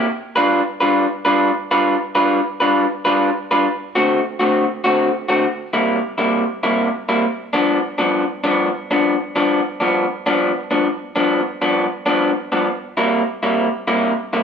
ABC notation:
X:1
M:4/4
L:1/8
Q:"Swing" 1/4=133
K:Gmix
V:1 name="Clean electric guitar"
z [G,DFB] z [G,DFB] z [G,DFB] z [G,DFB] | z [G,DFB] z [G,DFB] z [G,DFB] z [G,DFB] | z [D,A,C^F] z [D,A,CF] z [D,A,CF] z [D,A,CF] | z [C,G,_B,E] z [C,G,B,E] z [C,G,B,E] z [C,G,B,E] |
z [G,,F,B,D] z [G,,F,B,D] z [G,,F,B,D] z [G,,F,B,D] | z [G,,F,B,D] z [G,,F,B,D] z [G,,F,B,D] z [G,,F,B,D] | z [G,,F,B,D] z [G,,F,B,D] z [G,,F,B,D] z [G,,F,B,D] | z [C,G,_B,E] z [C,G,B,E] z [C,G,B,E] z [C,G,B,E] |]